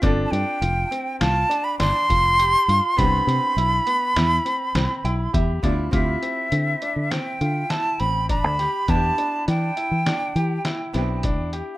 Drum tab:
HH |xxxxxxxxxx|xxxxxxxxxx|xxxxxxxxxx|xxxxxxxxxx|
SD |----o-o---|----o-o---|----o-o--o|--o-o-oo--|
BD |o------o--|o-------oo|o-------o-|o-------o-|